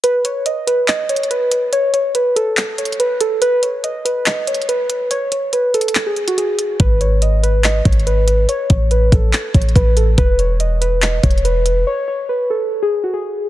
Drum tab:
HH |x-----x-----x-----x-----x-----x-x-x-x-----x-----|x-----x-----x-----x-----x-----x-x-x-x-----x-----|x-----x-----x-----x-----x-----x-x-x-x-----x-----|x-----x-----x-----x-x-x-x-----x--x--x-----x-----|
CP |------------------------x-----------------------|------------------------x-----------------------|------------------------x-----------------------|------------------------x-----------------------|
BD |------------------------------------------------|------------------------------------------------|------------------------------------------------|------------------------------------------------|

HH |x-----x-----x-----x-----x-----x-x-x-x-----x-----|x-----x-----x-----x-----x-----x-x-x-x-----x-----|x-----x-----x-----x-----x-----x-x-x-x-----x-----|------------------------------------------------|
CP |------------------------x-----------------------|------------------------x-----------------------|------------------------x-----------------------|------------------------------------------------|
BD |o-----------------------------o-----------------|------o-----------o-----------o-----o-----------|o-----------------------------o-----------------|------------------------------------------------|